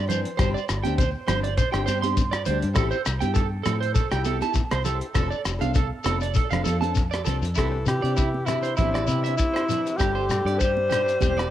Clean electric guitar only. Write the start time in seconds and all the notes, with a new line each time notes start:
0.09 C5
0.37 C5
0.54 D5
0.84 G5
0.98 C5
1.28 C5
1.43 D5
1.57 C5
1.72 G5
1.86 C5
2.02 C6
2.31 D5
2.46 C5
2.75 A4
2.91 C5
3.21 G5
3.34 A4
3.63 A4
3.80 C5
3.94 A4
4.12 G5
4.26 A4
4.42 A5
4.72 C5
4.85 A4
5.14 A4
5.30 D5
5.61 F5
5.76 A4
6.04 A4
6.22 D5
6.36 A4
6.51 F5
6.64 A4
6.81 A5
7.11 D5
7.25 A4
7.56 E4
7.72 muted clean electric guitar stroke
8.02 D5
8.17 E4
8.46 E4
8.63 C5
8.77 E4
8.94 D5
9.08 E4
9.24 E5
9.54 C5
9.69 E4
9.99 G4
10.15 C5
10.46 D5
10.59 G4
10.90 G4
11.06 muted clean electric guitar stroke
11.22 G4
11.38 D5